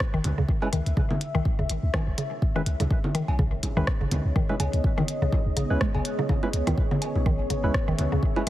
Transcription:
0.00 8.49 B3 medium
0.00 8.49 G#4 medium
0.00 8.49 C#5 medium
0.00 3.21 E5 medium
0.00 kick loud
0.00 cross-stick loud
0.14 0.20 G#1 medium
0.14 0.19 D#3 loud
0.24 0.33 C#2 medium
0.24 closed hi-hat medium
0.24 low bongo soft
0.24 low conga medium
0.38 0.45 C#2 medium
0.38 0.41 C#3 medium
0.49 kick loud
0.62 0.68 G#3 medium
0.62 0.68 C#4 medium
0.62 0.68 E4 medium
0.62 0.68 B4 medium
0.62 cowbell medium
0.73 0.81 C#2 medium
0.73 0.79 D#3 loud
0.73 closed hi-hat medium
0.86 0.93 C#2 medium
0.86 closed hi-hat soft
0.97 1.01 C#3 medium
0.97 kick loud
1.11 low bongo soft
1.11 low conga medium
1.21 closed hi-hat medium
1.35 1.41 B1 medium
1.35 1.40 D#3 loud
1.45 kick loud
1.59 1.66 C#2 loud
1.59 1.62 C#3 medium
1.70 1.78 G#1 medium
1.70 closed hi-hat medium
1.83 1.90 C#2 loud
1.94 2.00 D#3 loud
1.94 kick loud
1.94 cross-stick loud
1.94 cowbell medium
1.94 low bongo soft
2.07 2.14 B1 medium
2.18 2.22 C#3 medium
2.18 closed hi-hat medium
2.42 kick loud
2.56 2.61 D#3 loud
2.56 2.62 G#3 medium
2.56 2.62 C#4 medium
2.56 2.62 E4 medium
2.56 2.62 B4 medium
2.66 2.75 C#2 loud
2.66 closed hi-hat medium
2.80 2.87 C#2 medium
2.80 2.83 C#3 medium
2.80 closed hi-hat soft
2.80 low bongo soft
2.91 kick loud
3.04 low conga medium
3.15 3.21 D#3 loud
3.15 7.08 D#5 medium
3.15 closed hi-hat medium
3.28 3.54 B1 medium
3.28 cowbell medium
3.39 3.43 C#3 medium
3.39 kick loud
3.52 3.59 G#1 medium
3.63 kick medium
3.63 closed hi-hat medium
3.63 low bongo soft
3.77 3.83 C#2 loud
3.77 3.82 D#3 loud
3.77 3.86 G#3 medium
3.77 3.86 C#4 medium
3.77 3.86 E4 medium
3.77 3.86 B4 loud
3.87 kick loud
3.87 cross-stick loud
4.01 4.08 G#1 medium
4.01 4.04 C#3 medium
4.11 4.20 C#2 medium
4.11 closed hi-hat medium
4.11 low conga medium
4.25 4.32 C#2 medium
4.36 4.42 D#3 loud
4.36 kick loud
4.49 4.55 G#3 medium
4.49 4.55 C#4 medium
4.49 4.55 E4 medium
4.49 4.55 B4 medium
4.49 low bongo soft
4.60 4.68 C#2 loud
4.60 4.64 C#3 medium
4.60 closed hi-hat medium
4.60 cowbell medium
4.73 4.80 C#2 medium
4.73 closed hi-hat soft
4.84 kick loud
4.98 5.03 D#3 loud
4.98 low conga medium
5.08 closed hi-hat medium
5.22 5.29 B1 medium
5.22 5.25 C#3 medium
5.32 kick loud
5.32 low bongo soft
5.46 5.53 C#2 loud
5.57 5.65 G#1 medium
5.57 5.67 C#3 medium
5.57 closed hi-hat medium
5.70 5.77 C#2 loud
5.70 5.80 G#3 loud
5.70 5.80 C#4 medium
5.70 5.80 E4 medium
5.70 5.80 B4 loud
5.81 5.85 G#3 medium
5.81 kick loud
5.81 cross-stick loud
5.95 6.01 B1 medium
5.95 5.98 C#3 medium
5.95 cowbell medium
6.05 closed hi-hat medium
6.19 6.22 C#3 medium
6.19 low bongo soft
6.29 6.33 C#3 medium
6.29 kick loud
6.29 low bongo soft
6.43 6.49 G#3 medium
6.43 6.49 C#4 medium
6.43 6.49 E4 medium
6.43 6.49 B4 medium
6.43 high bongo medium
6.53 6.62 C#2 loud
6.53 closed hi-hat medium
6.67 6.74 C#2 medium
6.67 6.72 D#3 loud
6.67 closed hi-hat soft
6.67 high bongo medium
6.78 kick loud
6.91 6.94 C#3 medium
6.91 low conga medium
7.02 8.49 E5 medium
7.02 closed hi-hat medium
7.02 cowbell medium
7.15 7.41 B1 loud
7.15 low bongo soft
7.26 7.33 D#3 loud
7.26 kick loud
7.39 7.46 G#1 medium
7.50 7.54 C#3 medium
7.50 kick medium
7.50 closed hi-hat medium
7.64 7.70 C#2 loud
7.64 7.73 G#3 medium
7.64 7.73 C#4 medium
7.64 7.73 E4 medium
7.64 7.73 B4 loud
7.74 kick loud
7.74 cross-stick loud
7.88 7.95 G#1 medium
7.88 7.93 D#3 loud
7.99 8.07 C#2 medium
7.99 closed hi-hat medium
7.99 low bongo soft
7.99 low conga medium
8.12 8.19 C#2 medium
8.12 8.15 C#3 medium
8.23 kick loud
8.36 8.42 G#3 medium
8.36 8.42 C#4 medium
8.36 8.42 E4 medium
8.36 8.42 B4 medium
8.36 cowbell medium
8.36 high bongo medium

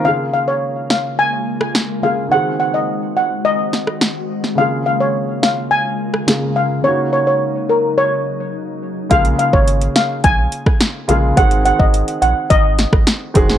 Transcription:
0.03 1.98 C#3 medium
0.03 2.29 C#3 medium
0.03 6.80 G#3 medium
0.03 1.99 A#3 medium
0.03 2.29 A#3 medium
0.03 2.29 F4 medium
0.03 2.00 F4 medium
0.03 0.15 F5 medium
0.08 2.01 G#4 medium
0.34 0.44 F5 medium
0.48 0.58 C#5 medium
0.90 1.00 F5 medium
0.90 snare loud
1.19 1.59 G#5 loud
1.61 cross-stick loud
1.75 snare loud
2.02 2.31 C#3 soft
2.02 2.31 A#3 soft
2.02 2.32 F4 soft
2.02 2.32 G#4 medium
2.02 2.13 F5 medium
2.29 4.53 D#3 medium
2.29 4.56 D#3 medium
2.29 4.54 C4 medium
2.29 4.56 C4 medium
2.29 4.56 F#4 medium
2.29 4.54 F#4 medium
2.29 2.42 F#5 medium
2.34 4.55 G#4 medium
2.60 2.70 F#5 medium
2.74 2.84 D#5 medium
3.17 3.27 F#5 medium
3.45 3.85 D#5 loud
3.73 snare medium
3.87 cross-stick medium
4.01 snare loud
4.44 snare medium
4.55 6.23 C#3 medium
4.55 6.82 C#3 medium
4.55 6.24 A#3 medium
4.55 9.07 A#3 medium
4.55 6.82 F4 medium
4.55 6.25 F4 medium
4.55 4.68 F5 medium
4.61 6.26 G#4 medium
4.86 4.96 F5 medium
5.00 5.10 C#5 medium
5.43 5.53 F5 medium
5.43 snare loud
5.71 6.11 G#5 medium
6.14 cross-stick medium
6.26 6.80 C#3 medium
6.26 6.82 A#3 medium
6.26 6.85 F4 medium
6.26 6.85 G#4 medium
6.26 snare loud
6.56 6.66 F5 medium
6.82 9.05 C#3 medium
6.82 9.09 C#3 medium
6.82 9.09 F#3 medium
6.82 9.06 A#3 medium
6.82 9.09 D#4 medium
6.82 9.07 D#4 medium
6.82 6.94 C#5 medium
6.87 9.08 F#4 medium
7.13 7.23 C#5 medium
7.27 7.37 C#5 medium
7.69 7.79 A#4 medium
7.98 8.38 C#5 loud
9.10 9.35 A#1 loud
9.10 10.16 C#3 medium
9.10 10.16 G#3 medium
9.10 10.16 A#3 medium
9.10 10.17 F4 medium
9.10 10.17 G#4 medium
9.10 9.21 F5 loud
9.10 kick loud
9.10 closed hi-hat medium
9.25 closed hi-hat medium
9.39 9.49 F5 medium
9.39 closed hi-hat medium
9.53 9.89 G#1 medium
9.53 9.63 C#5 medium
9.53 kick medium
9.68 closed hi-hat medium
9.81 closed hi-hat medium
9.96 10.06 F5 medium
9.96 snare loud
9.96 closed hi-hat medium
10.24 10.48 A#1 loud
10.24 10.64 G#5 loud
10.24 kick loud
10.24 closed hi-hat medium
10.52 closed hi-hat medium
10.66 kick loud
10.66 cross-stick loud
10.81 snare loud
10.81 closed hi-hat medium
11.08 11.33 A#1 medium
11.08 11.35 C#3 medium
11.08 11.35 G#3 medium
11.08 11.35 A#3 medium
11.08 11.36 F4 medium
11.08 11.36 G#4 medium
11.08 11.19 F5 medium
11.08 closed hi-hat medium
11.36 11.73 G#1 loud
11.36 12.42 D#3 medium
11.36 12.43 G#3 medium
11.36 12.43 C4 medium
11.36 12.43 F#4 medium
11.36 12.44 G#4 medium
11.36 11.47 F#5 loud
11.36 kick loud
11.36 closed hi-hat medium
11.51 closed hi-hat medium
11.65 11.76 F#5 medium
11.65 closed hi-hat medium
11.79 12.03 G#1 loud
11.79 11.90 D#5 medium
11.79 kick medium
11.94 closed hi-hat medium
12.08 closed hi-hat medium
12.22 12.34 A#1 medium
12.22 12.32 F#5 medium
12.22 closed hi-hat medium
12.50 12.86 G#1 loud
12.50 12.90 D#5 loud
12.50 kick loud
12.50 closed hi-hat medium
12.79 snare medium
12.79 closed hi-hat medium
12.93 13.05 G#1 medium
12.93 kick loud
12.93 cross-stick loud
13.07 snare loud
13.07 closed hi-hat medium
13.34 13.58 F1 loud
13.34 13.58 D#3 medium
13.34 13.58 G#3 medium
13.34 13.58 C4 medium
13.34 13.58 F#4 medium
13.34 13.58 G#4 loud
13.34 kick loud
13.34 closed hi-hat medium
13.49 snare medium

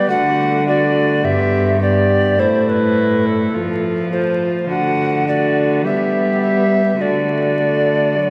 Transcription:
0.00 0.10 G3 medium
0.00 0.11 B3 medium
0.00 0.11 G4 medium
0.09 1.25 D3 medium
0.09 0.67 A3 medium
0.09 0.66 F#4 medium
0.09 0.66 F#5 loud
0.67 1.25 A3 medium
0.67 1.25 F#4 medium
0.67 1.26 D5 medium
1.24 2.41 G2 medium
1.24 1.80 B3 medium
1.24 1.80 G4 medium
1.24 1.81 E5 medium
1.80 2.40 B3 medium
1.80 2.41 G4 medium
1.80 2.41 D5 loud
2.38 3.56 A2 medium
2.38 3.53 A3 medium
2.38 3.56 E4 medium
2.38 2.70 C5 medium
2.69 3.28 B4 medium
3.26 3.84 A4 medium
3.54 4.69 F3 medium
3.54 4.10 A3 medium
3.54 4.12 F4 medium
4.11 4.48 A3 medium
4.11 4.71 F4 medium
4.11 4.65 C5 medium
4.69 5.85 D3 medium
4.69 5.22 A3 medium
4.69 5.27 F#4 medium
4.69 5.26 F#5 medium
5.27 5.86 A3 soft
5.27 5.85 F#4 medium
5.27 5.84 D5 medium
5.84 6.99 G3 medium
5.84 7.01 B3 medium
5.84 7.00 G4 soft
5.84 6.41 E5 medium
6.41 7.03 E5 medium
7.00 8.30 D3 medium
7.00 7.52 A3 soft
7.00 8.30 F#4 soft
7.00 8.30 D5 medium
7.59 8.19 A3 medium
8.18 8.30 F#3 medium

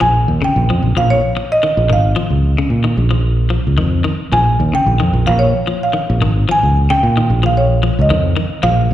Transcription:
0.00 0.25 A#1 medium
0.00 0.21 F3 medium
0.00 0.44 G#5 loud
0.28 0.41 D#2 loud
0.42 0.63 C#3 medium
0.42 0.94 G5 loud
0.56 0.68 A#1 medium
0.70 0.81 F2 medium
0.70 0.91 F3 medium
0.82 0.95 A#1 medium
0.97 1.20 A#1 medium
0.97 1.18 F3 medium
0.97 1.03 F5 medium
1.10 1.53 C#5 medium
1.37 muted clean electric guitar stroke medium
1.52 1.88 D#5 medium
1.63 1.84 D#3 medium
1.77 1.88 A#1 medium
1.90 2.13 G#1 loud
1.90 2.11 D#3 medium
1.90 2.95 F5 medium
2.16 2.37 F3 medium
2.30 2.54 C#2 medium
2.58 2.79 C#3 medium
2.70 2.99 A#2 medium
2.84 3.05 D#3 medium
2.97 3.57 A#1 loud
3.11 3.32 F3 medium
3.50 3.72 F3 medium
3.67 3.77 C#2 medium
3.78 4.02 F2 medium
3.78 3.99 D#3 medium
4.04 4.26 D#3 medium
4.32 4.56 A#1 medium
4.32 4.54 F3 medium
4.32 4.71 G#5 loud
4.60 4.72 D#2 medium
4.73 4.95 C#3 medium
4.73 5.25 G5 loud
4.86 4.99 A#1 medium
5.00 5.12 F2 medium
5.00 5.21 D#3 medium
5.13 5.26 A#1 medium
5.27 5.52 A#1 loud
5.27 5.49 F3 medium
5.27 5.33 F5 medium
5.39 5.78 C#5 medium
5.67 5.88 F3 medium
5.83 6.19 F5 medium
5.93 6.15 D#3 medium
6.10 6.20 A#1 loud
6.21 6.45 G#1 loud
6.21 6.42 D#3 medium
6.49 6.69 F3 medium
6.49 6.93 G#5 loud
6.63 6.87 C#2 medium
6.90 7.11 C#3 medium
6.90 7.40 G5 loud
7.03 7.31 A#2 medium
7.17 7.38 D#3 medium
7.30 7.89 A#1 medium
7.43 7.64 F3 medium
7.43 7.51 F5 medium
7.57 7.95 C#5 medium
7.83 8.04 F3 medium
7.99 8.09 C#2 medium
7.99 8.36 D#5 medium
8.10 8.34 F2 medium
8.10 8.31 D#3 medium
8.37 8.58 D#3 medium
8.63 8.87 A#1 loud
8.63 8.84 F3 medium
8.63 8.94 F5 loud
8.91 8.94 D#2 loud

